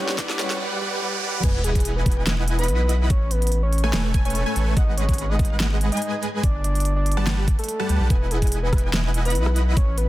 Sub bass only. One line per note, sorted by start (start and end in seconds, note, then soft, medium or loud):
1.43 2.70 E1 loud
2.68 3.09 B1 medium
3.10 3.92 A1 loud
3.93 4.45 E1 medium
4.56 4.75 A1 medium
4.77 5.91 G#1 medium
6.43 7.57 G1 loud
7.89 7.99 D2 medium
8.00 8.09 B1 loud
8.10 9.37 E1 loud
9.35 9.76 B1 medium
9.77 10.09 A1 loud